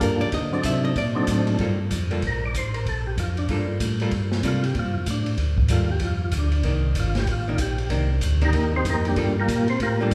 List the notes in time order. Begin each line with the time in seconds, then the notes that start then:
Already playing: G3 A#3 D4 F4 A4
0.01 G2 A#4, kick, hi-hat pedal, ride
0.21 G2 D5, ride
0.32 D3 D#5, kick, ride
0.53 F#3 C4 D4 D#4 A4 D5
0.63 C3 E5, kick, hi-hat pedal, ride
0.85 D#5
0.95 A#2 D5, kick, ride
1.15 F#3 C4 D4 D#4 A4
1.27 A2, kick, hi-hat pedal, ride
1.47 ride
1.59 G2 G3 A#3 F4 A4, kick, ride
1.91 F2, kick, hi-hat pedal, ride
2.11 G3 A#3 F4 A4, ride
2.22 A#1, kick, ride
2.27 A#4
2.46 D5
2.54 A1 C5, kick, hi-hat pedal, ride
2.74 A#4, ride
2.86 A#1 A4, kick, ride
3.07 G4
3.17 F2 F4, kick, hi-hat pedal, ride
3.37 D4, ride
3.49 G2 G3 A#3 F4 A4, kick, ride
3.80 A2, kick, hi-hat pedal, ride
4.00 G3 A#3 F4 A4, ride
4.11 G2, kick, ride
4.32 snare
4.43 C3 G3 A#3 F4 A4, kick, hi-hat pedal, ride
4.48 F4
4.64 G4, ride
4.75 A#2, kick, ride
4.79 F4
4.85 G2
4.96 F2 F4
5.06 A2, kick, hi-hat pedal, ride
5.11 D4
5.26 ride
5.37 D2, kick, ride
5.58 D2, kick
5.68 D#2 G3 A#3 F4 A4, kick, hi-hat pedal, ride
5.73 F4
5.91 G4
5.99 F2, kick, ride
6.05 F4
6.24 F4
6.31 D2, kick, hi-hat pedal, ride
6.38 D4
6.52 ride
6.63 C2 D#3 A#3 D4, kick, ride
6.95 G1, kick, hi-hat pedal, ride
7.00 F4
7.15 snare, ride
7.19 G4
7.27 A1, kick, ride
7.32 F4
7.48 D#3 A#3 D4 F4
7.58 A#1 G4, kick, hi-hat pedal, ride
7.78 ride
7.90 C2 D#3 A#3 D4, kick, ride
8.21 D2, kick, hi-hat pedal, ride
8.41 D#3 A#3 D4 G4 A#4, ride
8.46 D#4
8.53 D#2, kick, ride
8.76 C4 D#4 G4 C5
8.85 F2, kick, hi-hat pedal, ride
8.90 A#3 D#4 G4 A#4
9.05 G3 A#3 D4 G4, ride
9.16 G2 G3 A#3 F4 A4, kick, ride
9.40 A#3 F4 G4 A#4
9.48 A#2, kick, hi-hat pedal, ride
9.68 C4 C5, ride
9.80 A2 A#3 F4 G4 A#4, kick, ride
10.01 G3 A#3 D4 F4 G4 A4